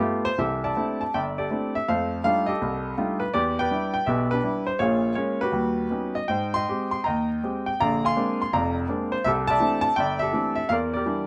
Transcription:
0.00 0.27 A3 medium
0.00 0.27 B3 medium
0.00 0.27 F4 medium
0.00 0.27 G4 medium
0.25 0.39 C5 loud
0.38 0.71 C2 medium
0.38 0.71 E3 medium
0.38 1.10 G4 medium
0.38 1.10 A4 medium
0.38 0.62 E5 medium
0.64 1.13 D5 medium
0.64 1.13 E5 medium
0.64 0.99 A5 medium
0.76 1.02 A3 soft
0.76 1.02 C4 soft
0.76 1.02 D4 soft
0.76 1.02 E4 medium
1.01 1.13 A5 medium
1.14 1.46 G1 medium
1.14 1.37 D5 medium
1.14 1.74 E5 medium
1.14 1.20 G5 medium
1.38 1.85 G4 soft
1.38 1.85 A4 soft
1.38 1.72 D5 medium
1.51 1.76 A3 soft
1.51 1.76 C4 soft
1.51 1.76 D4 soft
1.51 1.76 E4 soft
1.75 1.88 E5 medium
1.88 2.20 F2 medium
1.88 2.20 A3 medium
1.88 2.47 A4 medium
1.88 2.57 C5 medium
1.88 2.23 F5 medium
2.24 2.50 G3 medium
2.24 2.50 A3 soft
2.24 2.50 D4 soft
2.24 2.50 D#4 soft
2.24 2.50 F4 medium
2.24 2.46 F5 medium
2.46 3.17 G4 medium
2.46 3.17 A4 medium
2.46 3.22 D#5 medium
2.61 2.92 C2 medium
2.98 3.23 G3 medium
2.98 3.22 A3 soft
2.98 3.22 D4 soft
2.98 3.23 D#4 soft
2.98 3.23 F4 medium
3.20 3.33 B4 medium
3.34 3.65 E2 medium
3.34 4.03 G4 medium
3.34 3.59 B4 medium
3.34 3.58 D5 medium
3.59 4.08 B4 medium
3.59 4.28 D5 medium
3.59 3.92 G5 medium
3.71 3.95 G3 medium
3.71 3.95 D4 soft
3.71 3.96 E4 medium
3.94 4.06 G5 medium
4.06 4.38 B1 medium
4.06 4.38 B2 medium
4.06 4.30 G4 medium
4.06 4.29 B4 medium
4.06 4.31 E5 medium
4.31 4.42 D4 medium
4.31 4.77 G4 soft
4.31 4.64 B4 medium
4.44 4.68 G3 soft
4.44 4.68 D4 soft
4.44 4.68 E4 medium
4.67 4.78 C5 medium
4.79 5.11 A#1 medium
4.79 5.11 A#2 medium
4.79 5.51 F4 medium
4.79 5.51 G#4 medium
4.79 5.13 C#5 medium
5.15 5.42 G#3 soft
5.15 5.42 A#3 soft
5.15 5.42 C#4 medium
5.15 5.41 C#5 medium
5.41 6.14 F#4 medium
5.41 6.14 G4 medium
5.41 6.13 B4 medium
5.52 5.86 D#2 medium
5.52 5.86 G3 soft
5.90 6.17 G3 soft
5.90 6.18 B3 soft
5.90 6.18 C#4 soft
5.90 6.18 D#4 soft
6.15 6.28 D#5 medium
6.28 6.63 G#2 medium
6.28 7.02 C5 medium
6.28 6.54 D#5 medium
6.28 6.54 G5 medium
6.54 7.05 D#5 medium
6.54 7.05 G5 medium
6.54 6.90 C6 loud
6.68 6.95 G#3 soft
6.68 6.95 C4 soft
6.68 6.95 G4 medium
6.91 7.06 C6 medium
7.04 7.39 D#2 medium
7.04 7.76 D#5 medium
7.04 7.65 G5 medium
7.04 7.28 A#5 medium
7.44 7.69 G#3 soft
7.44 7.69 C4 soft
7.44 7.69 G4 soft
7.66 7.80 G5 medium
7.80 8.12 A#1 medium
7.80 8.12 D3 medium
7.80 8.49 D5 medium
7.80 8.04 F5 medium
7.80 8.05 A#5 medium
8.05 8.52 F5 medium
8.05 8.73 G#5 medium
8.05 8.40 C6 loud
8.16 8.41 G#3 medium
8.16 8.42 A#3 soft
8.16 8.42 C4 soft
8.16 8.42 D4 medium
8.42 8.54 C6 medium
8.53 8.84 F1 medium
8.53 8.84 F2 medium
8.53 9.21 D5 medium
8.53 9.22 F5 medium
8.53 8.75 A#5 medium
8.89 9.13 G#3 soft
8.89 9.14 A#3 soft
8.89 9.14 C4 soft
8.89 9.14 D4 medium
9.12 9.25 C5 medium
9.24 9.57 C2 medium
9.24 9.95 G4 medium
9.24 9.95 A4 medium
9.24 9.30 E5 loud
9.47 9.98 D5 medium
9.47 9.98 E5 medium
9.47 9.80 A5 loud
9.60 9.86 E3 medium
9.60 9.86 A3 medium
9.60 9.86 C4 medium
9.60 9.86 D4 medium
9.81 9.95 A5 loud
9.96 10.29 G1 medium
9.96 10.67 D5 medium
9.96 10.18 E5 medium
9.96 10.19 G5 medium
10.19 10.67 G4 medium
10.19 10.67 A4 medium
10.19 10.54 E5 medium
10.33 10.58 E3 medium
10.33 10.59 A3 soft
10.33 10.59 C4 soft
10.33 10.59 D4 medium
10.56 10.70 E5 medium
10.69 11.02 E2 medium
10.69 10.95 A#4 medium
10.69 10.92 D5 medium
10.69 10.74 F5 medium
10.94 11.27 G4 medium
10.94 11.27 A#4 medium
10.94 11.27 D5 medium
11.06 11.27 E3 soft
11.06 11.27 G3 soft
11.06 11.27 D4 medium

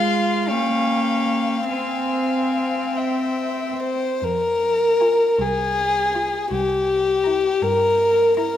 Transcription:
0.00 0.52 G#3 soft
0.00 0.50 F4 soft
0.00 0.44 F5 soft
0.00 0.50 C6 soft
0.48 1.72 A#3 soft
0.48 1.70 C#4 soft
0.48 1.68 F5 soft
0.48 1.69 G5 soft
1.70 3.76 C4 soft
1.70 3.98 C4 soft
1.70 2.99 F5 soft
1.70 2.98 G#5 soft
2.96 3.82 E5 soft
2.96 4.01 G5 soft
3.83 4.26 C5 soft
4.22 5.17 F2 soft
4.22 5.43 A#4 medium
5.00 5.29 F4 soft
5.00 5.29 G#5 soft
5.39 6.30 C2 soft
5.39 6.51 G#4 medium
6.12 6.41 F4 soft
6.12 6.40 G#5 soft
6.51 7.41 C2 soft
6.51 7.63 G4 medium
7.24 7.53 E4 soft
7.24 7.51 A#5 soft
7.62 8.53 G2 soft
7.62 8.36 A#4 medium
8.37 8.57 E4 soft
8.37 8.57 A#4 medium
8.37 8.57 A#5 soft

